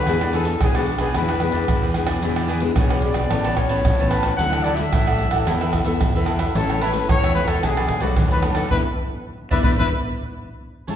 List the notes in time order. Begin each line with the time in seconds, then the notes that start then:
Already playing: B4
0.07 E2 E3 B3 D4 E4 G#4 B4 D5, pandeiro, maracas, surdo
0.21 B3 D4 G#4 B4 D5, pandeiro, tamborim, maracas
0.33 E4 G#4 A4 B4 D5, pandeiro, maracas
0.45 muted cavaquinho stroke, pandeiro, maracas
0.61 B1 B2 B3 D4 E4 G#4 B4 D5, pandeiro, tamborim, maracas, surdo
0.75 B3 D4 F#4 G#4 B4 D5, pandeiro, tamborim, maracas
0.86 pandeiro, maracas
0.99 B1 G#4 B4 D5, pandeiro, tamborim, maracas
1.14 E2 E3 B3 D4 E4 G#4 B4 D5, pandeiro, tamborim, maracas, surdo
1.29 G#4 B4 D5, pandeiro, tamborim, maracas
1.40 B3 D4 G#4, muted cavaquinho stroke, pandeiro, tamborim, maracas
1.52 E2 G#4 B4 D5, pandeiro, maracas
1.68 E2 B2, pandeiro, tamborim, maracas, surdo
1.82 G#4 B4 D5, pandeiro, maracas
1.94 B3 D4 E4 G#4 B4 D5, pandeiro, tamborim, maracas
2.07 G#4 B4 D5, pandeiro, tamborim, maracas
2.22 E2 E3 B3 D4 E4 G#4 B4 D5, pandeiro, maracas, surdo
2.36 G#4 B4 D5, pandeiro, tamborim, maracas
2.48 E4 G#4 B4 D5, pandeiro
2.60 B3 D4 G#4, muted cavaquinho stroke, pandeiro, maracas
2.76 B1 B2 E4 G#4 B4 C#5 D5, pandeiro, tamborim, maracas, surdo
2.90 G#4 B4 D5, pandeiro, tamborim, maracas
3.02 B3 D4 G#4 D5, pandeiro, maracas
3.14 B1 G#4 B4 D5, pandeiro, tamborim, maracas
3.30 A1 A2 E3 B3 C#4 A4 B4 C#5 A5, pandeiro, tamborim, maracas, surdo
3.45 B4 C#5 A5, pandeiro, tamborim, maracas
3.56 C#5, muted cavaquinho stroke, pandeiro, tamborim, surdo
3.69 A1 E3 B3 C#4 B4 C#5 A5, pandeiro, maracas
3.85 A1 E3, pandeiro, tamborim, maracas, surdo
3.99 E3 B3 C#4 B4 C#5 A5, pandeiro, maracas
4.09 A4 B4 C#5 A5, pandeiro, tamborim
4.23 B4 C#5 A5, pandeiro, tamborim, maracas
4.37 D2 D3 F#3 A3 E4 A4 D5 F#5, pandeiro, maracas, surdo
4.41 E4
4.53 A4 D5 F#5, pandeiro, tamborim, maracas
4.63 E4 A4 D5 F#5, pandeiro, maracas
4.76 F#3 A3 E4 E5, muted cavaquinho stroke, pandeiro, maracas
4.93 A1 A2 E4 A4 D5 F#5, pandeiro, tamborim, maracas, surdo
5.07 A4 D5 F#5, pandeiro, tamborim, maracas
5.18 F#3 A3 E4, pandeiro, maracas
5.31 A1 A4 D5 F#5, pandeiro, tamborim, maracas
5.47 E2 E3 B3 E4 A4 B4 E5, pandeiro, tamborim, maracas, surdo
5.61 A4 B4 E5, pandeiro, tamborim, maracas
5.73 muted cavaquinho stroke, pandeiro, tamborim, maracas, surdo
5.85 E2 B3 E4 A4 B4 E5, pandeiro, maracas
6.01 E2 B2, pandeiro, tamborim, maracas, surdo
6.15 B3 E4 A4 B4 E5, pandeiro, maracas
6.26 E4 A4 B4 E5, pandeiro, tamborim, maracas
6.38 A4 B4 E5, pandeiro, tamborim, maracas
6.55 A1 A2 E3 A3 C#4 E4 A4 C#5 E5, pandeiro, maracas, surdo
6.69 A4 C#5 E5, pandeiro, tamborim, maracas
6.81 E4 A4 B4 C#5 E5, pandeiro, maracas
6.93 E3 A3 C#4, muted cavaquinho stroke, pandeiro, maracas
7.09 E2 E3 E4 A4 C#5 E5, pandeiro, tamborim, maracas, surdo
7.23 A4 C#5 E5, pandeiro, tamborim, maracas
7.35 E3 A3 C#4 B4, pandeiro
7.47 E2 A4 C#5 E5, pandeiro, tamborim, maracas
7.63 B1 B2 F#3 A3 D4 G#4 A4 B4 D5, pandeiro, tamborim, maracas, surdo
7.77 A4 B4 D5, pandeiro, tamborim, maracas
7.88 muted cavaquinho stroke, pandeiro, tamborim, maracas, surdo
8.00 B1 F#3 A3 D4 F#4 A4 B4 D5, pandeiro, maracas
8.16 D#2 F#2, pandeiro, tamborim, maracas, surdo
8.31 A4 B4 D5, pandeiro, maracas
8.42 F#3 A3 D4 A4 B4 D5, pandeiro, tamborim, maracas
8.55 A4 B4 D5, pandeiro, tamborim, maracas
8.70 E2 B3 D4 E4 B4 D5 E5, surdo
9.51 E2 B3 D4 E4 B4 D5 E5, surdo
9.63 E2 B3 D4 E4 B4 D5 E5, surdo
9.78 E2 B3 D4 E4 B4 D5 E5, surdo
10.87 A2 G#3 C#4 E4 G#4 C#5 E5 A5, pandeiro, surdo